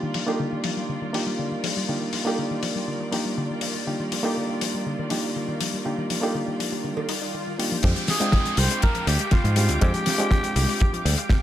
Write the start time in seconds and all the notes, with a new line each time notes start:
Already playing: D#3 G3 A#3 D4 D#4 F4 G4 D5
0.03 D#3
0.14 F3, open hi-hat
0.27 G3 A#3 D4 D#4 F4 G4, cowbell
0.40 D3
0.52 D#3
0.64 F3, open hi-hat
0.77 G3
0.89 D3
1.02 D#3
1.13 F3 A#3 D4 D#4 F4 G4, open hi-hat
1.27 G3
1.39 D3
1.52 D#3
1.64 F3, open hi-hat
1.77 G3
1.88 D3 A#3 D4 D#4 F4 G4
2.01 D#3
2.13 F3, open hi-hat
2.25 G3 A#3 D4 D#4 F4 G4, cowbell
2.38 D3
2.51 D#3
2.63 F3, open hi-hat
2.76 G3
2.88 D3
3.00 D#3
3.12 F3 A#3 D4 D#4 F4 G4, open hi-hat
3.25 G3
3.38 D3
3.50 D#3
3.61 F3, open hi-hat
3.75 G3
3.87 D3 A#3 D4 D#4 F4 G4
4.00 D#3
4.12 F3, open hi-hat
4.23 G3 A#3 D4 D#4 F4 G4, cowbell
4.37 D3
4.50 D#3
4.61 F3, open hi-hat
4.74 G3
4.86 D3
4.99 D#3
5.09 F3 A#3 D4 D#4 F4 G4, open hi-hat
5.24 G3
5.36 D3
5.48 D#3
5.61 F3, open hi-hat
5.74 G3
5.85 D3 A#3 D4 D#4 F4 G4
5.98 D#3
6.10 F3, open hi-hat
6.21 G3 A#3 D4 D#4 F4 G4, cowbell
6.35 D3
6.48 D#3
6.60 F3, open hi-hat
6.72 G3
6.84 D3, swell
6.97 D#3, cowbell
7.09 D#4, open hi-hat
7.22 D#4
7.34 D#3
7.47 D#3
7.59 G3 A#3 D4 D#4 F4 G4, open hi-hat
7.72 F3
7.83 F2 D3 G#3 C4 D4 F4 G4 F5 G5 D6, kick, closed hi-hat, downlifter, shaker
7.96 F3, closed hi-hat, shaker
8.08 G3 G#4, snare, open hi-hat, shaker
8.20 G#3 C4 D4 F4 G5, closed hi-hat, shaker
8.32 D3, kick, snare, closed hi-hat
8.46 F3, closed hi-hat, shaker
8.57 C2 G3 C5, open hi-hat, shaker
8.71 G#3, closed hi-hat, shaker
8.82 D3 A#4, kick, closed hi-hat, shaker
8.95 F3, closed hi-hat
9.07 D2 G3 G4, open hi-hat, shaker
9.19 G#3, closed hi-hat, shaker
9.31 D3 F4, kick, snare, closed hi-hat, shaker
9.44 G#2 F3, closed hi-hat
9.56 G3 G#3 C4 D4 F4 G4, open hi-hat, shaker
9.69 D2 G#3, closed hi-hat, shaker
9.81 F2 D3 G#3 C4 D4 F4 G4, kick, closed hi-hat, shaker
9.94 F3, closed hi-hat, shaker
10.06 G3, snare, open hi-hat, shaker
10.18 G#3 C4 D4 F4 G4, closed hi-hat, shaker
10.31 D3, kick, snare, closed hi-hat, shaker
10.44 F3, closed hi-hat, shaker
10.56 C2 G3, open hi-hat, shaker
10.68 G#3, open hi-hat, shaker
10.80 D3, kick, closed hi-hat, shaker
10.93 F3, closed hi-hat
11.05 D2 G3, open hi-hat, shaker
11.18 G#3, closed hi-hat, shaker
11.29 D3, kick, snare, closed hi-hat, shaker